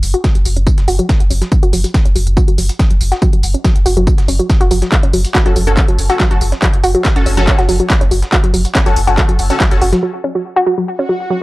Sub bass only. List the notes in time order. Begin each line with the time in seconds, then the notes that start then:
0.03 F#1
0.35 F#1
0.45 F#1
0.56 F#1
0.78 F#1
0.88 F#1
1.20 F#1
1.30 F#1
1.63 F#1
1.73 F#1
2.05 F#1
2.16 F#1
2.27 F#1
2.48 F#1
2.58 F#1
2.91 F#1
3.01 F#1
3.33 F#1
3.43 F#1
3.76 F#1
3.86 F#1
3.97 F#1
4.18 F#1
4.28 F#1
4.61 F#1
4.71 F#1
5.03 F#1
5.13 F#1
5.46 F#1
5.56 F#1
5.67 F#1
5.88 F#1
5.98 F#1
6.31 F#1
6.41 F#1
6.73 F#1
6.84 F#1
7.16 F#1
7.26 F#1
7.37 F#1
7.59 F#1
7.69 F#1
8.01 F#1
8.11 F#1
8.44 F#1
8.54 F#1
8.86 F#1
8.96 F#1
9.08 F#1
9.29 F#1
9.39 F#1
9.71 F#1
9.81 F#1